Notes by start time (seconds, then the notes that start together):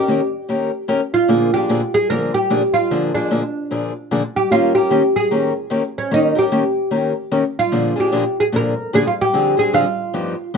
Already playing: G4
0.08 D#3 A#3 C#4 G4 A#4
0.49 D#3 A#3 C#4 G4 A#4
0.88 D#3 A#3 C#4 G4 A#4
1.14 F4
1.28 A#2 D3 F3 A#3 D4 G#4
1.54 F3 A#3 D4 G4 G#4
1.69 A#2 D3 F3 A#3 D4 G#4
1.94 G#4
2.10 A#2 D3 F3 A#3 D4 G#4 A#4
2.34 G4
2.50 A#2 D3 F3 A#3 D4 G#4
2.74 F4
2.91 A#2 D3 F3 A#3 D4 G#4
3.14 F3 A#3 D4 G#4
3.31 A#2 D3 F3 A#3 D4 G#4
3.71 A#2 D3 F3 A#3 D4 G#4
4.11 A#2 D3 F3 A#3 D4 G#4
4.36 G4
4.51 D#3 A#3 C#4 F4 G4 A#4
4.75 C#4 G4 A#4
4.90 D#3 A#3 C#4 G4 A#4
5.16 G#4
5.31 D#3 A#3 C#4 G4 A#4
5.70 D#3 A#3 C#4 G4 A#4
5.98 C#4
6.11 D#3 A#3 C#4 D#4 G4 A#4
6.35 C#4 G4 A#4
6.52 D#3 A#3 C#4 G4 A#4
6.91 D#3 A#3 C#4 G4 A#4
7.31 D#3 A#3 C#4 G4 A#4
7.59 F4
7.72 A#2 D3 F3 A#3 D4 G#4
7.96 F3 A#3 D4 G#4
8.00 G4
8.12 A#2 D3 F3 A#3 D4 G#4
8.40 G#4
8.52 A#2 D3 F3 A#3 D4 G#4 A#4
8.93 A#2 D3 F3 A#3 D4 G#4
9.07 F4
9.21 G4
9.33 D3 F3 C4 D4 G#4
9.57 C4 D4 G#4
9.73 D3 F3 C4 D4 F4 G#4
10.13 G2 F3 B3 D#4 G4
10.54 G2 F3